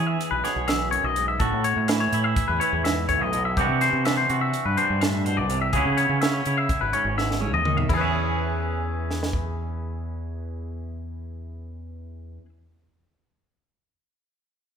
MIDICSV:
0, 0, Header, 1, 5, 480
1, 0, Start_track
1, 0, Key_signature, 4, "major"
1, 0, Tempo, 480384
1, 1398, Time_signature, 9, 3, 24, 8
1, 14757, End_track
2, 0, Start_track
2, 0, Title_t, "Clean electric guitar"
2, 0, Program_c, 0, 27
2, 65, Note_on_c, 0, 76, 61
2, 304, Note_off_c, 0, 76, 0
2, 308, Note_on_c, 0, 71, 66
2, 436, Note_off_c, 0, 71, 0
2, 436, Note_on_c, 0, 73, 78
2, 676, Note_off_c, 0, 73, 0
2, 676, Note_on_c, 0, 76, 63
2, 906, Note_off_c, 0, 76, 0
2, 910, Note_on_c, 0, 73, 71
2, 1044, Note_off_c, 0, 73, 0
2, 1044, Note_on_c, 0, 75, 63
2, 1276, Note_off_c, 0, 75, 0
2, 1280, Note_on_c, 0, 76, 59
2, 1394, Note_on_c, 0, 69, 83
2, 1399, Note_off_c, 0, 76, 0
2, 1637, Note_off_c, 0, 69, 0
2, 1642, Note_on_c, 0, 73, 82
2, 1879, Note_off_c, 0, 73, 0
2, 1879, Note_on_c, 0, 76, 81
2, 1998, Note_off_c, 0, 76, 0
2, 2002, Note_on_c, 0, 73, 62
2, 2238, Note_off_c, 0, 73, 0
2, 2238, Note_on_c, 0, 76, 68
2, 2476, Note_on_c, 0, 71, 61
2, 2480, Note_off_c, 0, 76, 0
2, 2597, Note_on_c, 0, 73, 71
2, 2599, Note_off_c, 0, 71, 0
2, 2838, Note_off_c, 0, 73, 0
2, 2842, Note_on_c, 0, 76, 77
2, 3080, Note_off_c, 0, 76, 0
2, 3084, Note_on_c, 0, 73, 74
2, 3211, Note_off_c, 0, 73, 0
2, 3211, Note_on_c, 0, 75, 60
2, 3445, Note_off_c, 0, 75, 0
2, 3449, Note_on_c, 0, 76, 59
2, 3567, Note_off_c, 0, 76, 0
2, 3572, Note_on_c, 0, 67, 80
2, 3809, Note_off_c, 0, 67, 0
2, 3810, Note_on_c, 0, 72, 78
2, 4047, Note_off_c, 0, 72, 0
2, 4051, Note_on_c, 0, 76, 89
2, 4165, Note_off_c, 0, 76, 0
2, 4169, Note_on_c, 0, 72, 61
2, 4406, Note_off_c, 0, 72, 0
2, 4410, Note_on_c, 0, 76, 75
2, 4649, Note_off_c, 0, 76, 0
2, 4653, Note_on_c, 0, 71, 66
2, 4768, Note_on_c, 0, 72, 71
2, 4770, Note_off_c, 0, 71, 0
2, 5007, Note_off_c, 0, 72, 0
2, 5007, Note_on_c, 0, 76, 74
2, 5246, Note_off_c, 0, 76, 0
2, 5246, Note_on_c, 0, 72, 65
2, 5366, Note_off_c, 0, 72, 0
2, 5366, Note_on_c, 0, 74, 72
2, 5607, Note_off_c, 0, 74, 0
2, 5611, Note_on_c, 0, 76, 55
2, 5725, Note_on_c, 0, 68, 86
2, 5730, Note_off_c, 0, 76, 0
2, 5967, Note_off_c, 0, 68, 0
2, 5968, Note_on_c, 0, 73, 85
2, 6205, Note_off_c, 0, 73, 0
2, 6209, Note_on_c, 0, 76, 75
2, 6332, Note_off_c, 0, 76, 0
2, 6332, Note_on_c, 0, 73, 66
2, 6568, Note_off_c, 0, 73, 0
2, 6568, Note_on_c, 0, 76, 65
2, 6804, Note_on_c, 0, 71, 57
2, 6809, Note_off_c, 0, 76, 0
2, 6926, Note_off_c, 0, 71, 0
2, 6926, Note_on_c, 0, 73, 72
2, 7168, Note_off_c, 0, 73, 0
2, 7173, Note_on_c, 0, 76, 72
2, 7404, Note_off_c, 0, 76, 0
2, 7404, Note_on_c, 0, 73, 67
2, 7526, Note_off_c, 0, 73, 0
2, 7532, Note_on_c, 0, 75, 61
2, 7762, Note_off_c, 0, 75, 0
2, 7762, Note_on_c, 0, 76, 64
2, 7885, Note_off_c, 0, 76, 0
2, 7887, Note_on_c, 0, 64, 64
2, 7929, Note_off_c, 0, 64, 0
2, 7929, Note_on_c, 0, 68, 61
2, 7967, Note_on_c, 0, 71, 57
2, 8007, Note_on_c, 0, 76, 64
2, 12441, Note_off_c, 0, 71, 0
2, 12443, Note_off_c, 0, 68, 0
2, 12482, Note_off_c, 0, 76, 0
2, 14757, End_track
3, 0, Start_track
3, 0, Title_t, "Clean electric guitar"
3, 0, Program_c, 1, 27
3, 0, Note_on_c, 1, 40, 73
3, 0, Note_on_c, 1, 52, 61
3, 0, Note_on_c, 1, 68, 55
3, 433, Note_off_c, 1, 68, 0
3, 438, Note_on_c, 1, 47, 63
3, 445, Note_on_c, 1, 68, 61
3, 655, Note_off_c, 1, 40, 0
3, 667, Note_on_c, 1, 40, 59
3, 912, Note_off_c, 1, 40, 0
3, 918, Note_on_c, 1, 42, 61
3, 1158, Note_off_c, 1, 42, 0
3, 1174, Note_on_c, 1, 44, 60
3, 1374, Note_off_c, 1, 68, 0
3, 1399, Note_off_c, 1, 44, 0
3, 1399, Note_off_c, 1, 47, 0
3, 1403, Note_on_c, 1, 45, 81
3, 1410, Note_on_c, 1, 66, 69
3, 1879, Note_off_c, 1, 52, 0
3, 1883, Note_on_c, 1, 52, 63
3, 1893, Note_on_c, 1, 64, 57
3, 2135, Note_off_c, 1, 66, 0
3, 2139, Note_off_c, 1, 64, 0
3, 2139, Note_on_c, 1, 64, 65
3, 2604, Note_off_c, 1, 52, 0
3, 2604, Note_on_c, 1, 52, 63
3, 2619, Note_off_c, 1, 64, 0
3, 2619, Note_on_c, 1, 64, 57
3, 2838, Note_off_c, 1, 45, 0
3, 2842, Note_on_c, 1, 44, 65
3, 3077, Note_off_c, 1, 44, 0
3, 3081, Note_on_c, 1, 45, 61
3, 3323, Note_off_c, 1, 45, 0
3, 3326, Note_off_c, 1, 52, 0
3, 3330, Note_on_c, 1, 47, 58
3, 3568, Note_off_c, 1, 47, 0
3, 3577, Note_on_c, 1, 48, 71
3, 3583, Note_on_c, 1, 52, 64
3, 3589, Note_on_c, 1, 59, 54
3, 3594, Note_off_c, 1, 64, 0
3, 3598, Note_on_c, 1, 62, 62
3, 3604, Note_on_c, 1, 66, 62
3, 4045, Note_off_c, 1, 62, 0
3, 4048, Note_off_c, 1, 52, 0
3, 4052, Note_off_c, 1, 48, 0
3, 4052, Note_on_c, 1, 52, 61
3, 4060, Note_on_c, 1, 62, 48
3, 4283, Note_off_c, 1, 66, 0
3, 4295, Note_on_c, 1, 66, 53
3, 4763, Note_off_c, 1, 62, 0
3, 4769, Note_on_c, 1, 43, 66
3, 4775, Note_on_c, 1, 62, 62
3, 5009, Note_off_c, 1, 43, 0
3, 5020, Note_on_c, 1, 45, 62
3, 5254, Note_off_c, 1, 45, 0
3, 5256, Note_on_c, 1, 47, 62
3, 5492, Note_off_c, 1, 47, 0
3, 5496, Note_on_c, 1, 48, 66
3, 5704, Note_off_c, 1, 62, 0
3, 5704, Note_off_c, 1, 66, 0
3, 5729, Note_off_c, 1, 48, 0
3, 5733, Note_on_c, 1, 49, 70
3, 5739, Note_off_c, 1, 52, 0
3, 5743, Note_on_c, 1, 52, 50
3, 5744, Note_off_c, 1, 59, 0
3, 5748, Note_on_c, 1, 59, 59
3, 5755, Note_on_c, 1, 61, 60
3, 5764, Note_on_c, 1, 64, 65
3, 6212, Note_off_c, 1, 49, 0
3, 6213, Note_off_c, 1, 61, 0
3, 6214, Note_off_c, 1, 52, 0
3, 6225, Note_on_c, 1, 61, 55
3, 6451, Note_off_c, 1, 64, 0
3, 6463, Note_on_c, 1, 64, 59
3, 6925, Note_off_c, 1, 61, 0
3, 6932, Note_on_c, 1, 44, 58
3, 6937, Note_on_c, 1, 61, 59
3, 7176, Note_on_c, 1, 47, 57
3, 7401, Note_off_c, 1, 47, 0
3, 7405, Note_on_c, 1, 49, 53
3, 7647, Note_off_c, 1, 49, 0
3, 7653, Note_on_c, 1, 51, 54
3, 7861, Note_off_c, 1, 44, 0
3, 7864, Note_off_c, 1, 61, 0
3, 7870, Note_off_c, 1, 59, 0
3, 7890, Note_off_c, 1, 51, 0
3, 7891, Note_on_c, 1, 40, 66
3, 7940, Note_on_c, 1, 52, 65
3, 7991, Note_on_c, 1, 61, 61
3, 8039, Note_off_c, 1, 64, 0
3, 8043, Note_on_c, 1, 68, 55
3, 12405, Note_off_c, 1, 40, 0
3, 12455, Note_off_c, 1, 52, 0
3, 12505, Note_off_c, 1, 61, 0
3, 12558, Note_off_c, 1, 68, 0
3, 14757, End_track
4, 0, Start_track
4, 0, Title_t, "Fingered electric bass"
4, 0, Program_c, 2, 33
4, 0, Note_on_c, 2, 52, 84
4, 160, Note_off_c, 2, 52, 0
4, 316, Note_on_c, 2, 35, 80
4, 417, Note_off_c, 2, 35, 0
4, 560, Note_on_c, 2, 35, 89
4, 967, Note_off_c, 2, 35, 0
4, 1039, Note_on_c, 2, 35, 83
4, 1401, Note_off_c, 2, 35, 0
4, 1401, Note_on_c, 2, 33, 93
4, 1502, Note_off_c, 2, 33, 0
4, 1524, Note_on_c, 2, 45, 84
4, 1727, Note_off_c, 2, 45, 0
4, 1763, Note_on_c, 2, 45, 98
4, 2069, Note_off_c, 2, 45, 0
4, 2123, Note_on_c, 2, 45, 84
4, 2327, Note_off_c, 2, 45, 0
4, 2490, Note_on_c, 2, 40, 80
4, 2589, Note_off_c, 2, 40, 0
4, 2725, Note_on_c, 2, 40, 90
4, 3207, Note_off_c, 2, 40, 0
4, 3207, Note_on_c, 2, 35, 79
4, 3571, Note_off_c, 2, 35, 0
4, 3571, Note_on_c, 2, 36, 88
4, 3671, Note_off_c, 2, 36, 0
4, 3687, Note_on_c, 2, 48, 82
4, 3891, Note_off_c, 2, 48, 0
4, 3927, Note_on_c, 2, 48, 89
4, 4233, Note_off_c, 2, 48, 0
4, 4294, Note_on_c, 2, 48, 83
4, 4495, Note_off_c, 2, 48, 0
4, 4650, Note_on_c, 2, 43, 86
4, 4751, Note_off_c, 2, 43, 0
4, 4898, Note_on_c, 2, 43, 89
4, 5377, Note_on_c, 2, 36, 81
4, 5392, Note_off_c, 2, 43, 0
4, 5727, Note_off_c, 2, 36, 0
4, 5727, Note_on_c, 2, 37, 91
4, 5830, Note_off_c, 2, 37, 0
4, 5850, Note_on_c, 2, 49, 95
4, 6054, Note_off_c, 2, 49, 0
4, 6090, Note_on_c, 2, 49, 98
4, 6396, Note_off_c, 2, 49, 0
4, 6459, Note_on_c, 2, 49, 80
4, 6659, Note_off_c, 2, 49, 0
4, 6807, Note_on_c, 2, 32, 85
4, 6910, Note_off_c, 2, 32, 0
4, 7042, Note_on_c, 2, 32, 89
4, 7529, Note_off_c, 2, 32, 0
4, 7529, Note_on_c, 2, 39, 94
4, 7835, Note_off_c, 2, 39, 0
4, 7888, Note_on_c, 2, 40, 91
4, 12363, Note_off_c, 2, 40, 0
4, 14757, End_track
5, 0, Start_track
5, 0, Title_t, "Drums"
5, 206, Note_on_c, 9, 42, 74
5, 306, Note_off_c, 9, 42, 0
5, 446, Note_on_c, 9, 42, 51
5, 458, Note_on_c, 9, 38, 28
5, 546, Note_off_c, 9, 42, 0
5, 558, Note_off_c, 9, 38, 0
5, 678, Note_on_c, 9, 42, 69
5, 690, Note_on_c, 9, 38, 98
5, 778, Note_off_c, 9, 42, 0
5, 790, Note_off_c, 9, 38, 0
5, 923, Note_on_c, 9, 42, 50
5, 1023, Note_off_c, 9, 42, 0
5, 1160, Note_on_c, 9, 42, 63
5, 1259, Note_off_c, 9, 42, 0
5, 1396, Note_on_c, 9, 42, 76
5, 1400, Note_on_c, 9, 36, 98
5, 1496, Note_off_c, 9, 42, 0
5, 1500, Note_off_c, 9, 36, 0
5, 1641, Note_on_c, 9, 42, 60
5, 1741, Note_off_c, 9, 42, 0
5, 1879, Note_on_c, 9, 42, 81
5, 1891, Note_on_c, 9, 38, 109
5, 1979, Note_off_c, 9, 42, 0
5, 1991, Note_off_c, 9, 38, 0
5, 2124, Note_on_c, 9, 42, 61
5, 2224, Note_off_c, 9, 42, 0
5, 2362, Note_on_c, 9, 42, 78
5, 2363, Note_on_c, 9, 36, 103
5, 2462, Note_off_c, 9, 42, 0
5, 2463, Note_off_c, 9, 36, 0
5, 2608, Note_on_c, 9, 42, 52
5, 2708, Note_off_c, 9, 42, 0
5, 2848, Note_on_c, 9, 42, 69
5, 2860, Note_on_c, 9, 38, 92
5, 2948, Note_off_c, 9, 42, 0
5, 2960, Note_off_c, 9, 38, 0
5, 3085, Note_on_c, 9, 36, 54
5, 3085, Note_on_c, 9, 42, 53
5, 3185, Note_off_c, 9, 36, 0
5, 3185, Note_off_c, 9, 42, 0
5, 3326, Note_on_c, 9, 42, 51
5, 3426, Note_off_c, 9, 42, 0
5, 3567, Note_on_c, 9, 36, 97
5, 3567, Note_on_c, 9, 42, 68
5, 3667, Note_off_c, 9, 36, 0
5, 3667, Note_off_c, 9, 42, 0
5, 3808, Note_on_c, 9, 42, 52
5, 3820, Note_on_c, 9, 38, 35
5, 3908, Note_off_c, 9, 42, 0
5, 3920, Note_off_c, 9, 38, 0
5, 4050, Note_on_c, 9, 42, 69
5, 4062, Note_on_c, 9, 38, 106
5, 4150, Note_off_c, 9, 42, 0
5, 4162, Note_off_c, 9, 38, 0
5, 4292, Note_on_c, 9, 42, 50
5, 4392, Note_off_c, 9, 42, 0
5, 4531, Note_on_c, 9, 42, 75
5, 4631, Note_off_c, 9, 42, 0
5, 4771, Note_on_c, 9, 42, 45
5, 4871, Note_off_c, 9, 42, 0
5, 5011, Note_on_c, 9, 42, 69
5, 5023, Note_on_c, 9, 38, 97
5, 5111, Note_off_c, 9, 42, 0
5, 5123, Note_off_c, 9, 38, 0
5, 5255, Note_on_c, 9, 42, 47
5, 5355, Note_off_c, 9, 42, 0
5, 5492, Note_on_c, 9, 42, 62
5, 5592, Note_off_c, 9, 42, 0
5, 5724, Note_on_c, 9, 42, 77
5, 5729, Note_on_c, 9, 36, 93
5, 5824, Note_off_c, 9, 42, 0
5, 5829, Note_off_c, 9, 36, 0
5, 5971, Note_on_c, 9, 42, 71
5, 6071, Note_off_c, 9, 42, 0
5, 6212, Note_on_c, 9, 42, 80
5, 6224, Note_on_c, 9, 38, 101
5, 6311, Note_off_c, 9, 42, 0
5, 6323, Note_off_c, 9, 38, 0
5, 6450, Note_on_c, 9, 42, 60
5, 6549, Note_off_c, 9, 42, 0
5, 6688, Note_on_c, 9, 36, 101
5, 6688, Note_on_c, 9, 42, 77
5, 6788, Note_off_c, 9, 36, 0
5, 6788, Note_off_c, 9, 42, 0
5, 6927, Note_on_c, 9, 42, 51
5, 7027, Note_off_c, 9, 42, 0
5, 7177, Note_on_c, 9, 38, 53
5, 7277, Note_off_c, 9, 38, 0
5, 7305, Note_on_c, 9, 38, 56
5, 7404, Note_off_c, 9, 38, 0
5, 7413, Note_on_c, 9, 48, 58
5, 7512, Note_off_c, 9, 48, 0
5, 7532, Note_on_c, 9, 47, 58
5, 7632, Note_off_c, 9, 47, 0
5, 7648, Note_on_c, 9, 45, 84
5, 7748, Note_off_c, 9, 45, 0
5, 7770, Note_on_c, 9, 43, 72
5, 7870, Note_off_c, 9, 43, 0
5, 7888, Note_on_c, 9, 36, 86
5, 7891, Note_on_c, 9, 49, 70
5, 7988, Note_off_c, 9, 36, 0
5, 7991, Note_off_c, 9, 49, 0
5, 9099, Note_on_c, 9, 38, 47
5, 9199, Note_off_c, 9, 38, 0
5, 9221, Note_on_c, 9, 38, 62
5, 9321, Note_off_c, 9, 38, 0
5, 9326, Note_on_c, 9, 36, 68
5, 9426, Note_off_c, 9, 36, 0
5, 14757, End_track
0, 0, End_of_file